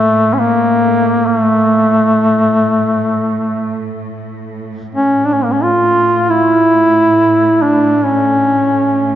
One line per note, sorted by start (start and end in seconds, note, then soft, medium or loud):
0.00 4.91 A2 soft
0.00 0.35 A3 loud
0.33 0.40 C#4 medium
0.39 1.27 A#3 medium
1.27 1.38 A#3 medium
1.38 4.00 A3 medium
4.92 9.15 A2 soft
4.92 5.27 C#4 medium
5.25 5.35 D4 medium
5.33 5.45 C#4 medium
5.44 5.53 A#3 medium
5.52 5.65 C#4 medium
5.63 6.31 F4 medium
6.30 7.63 E4 loud
7.62 8.06 D4 medium
8.04 9.15 C#4 medium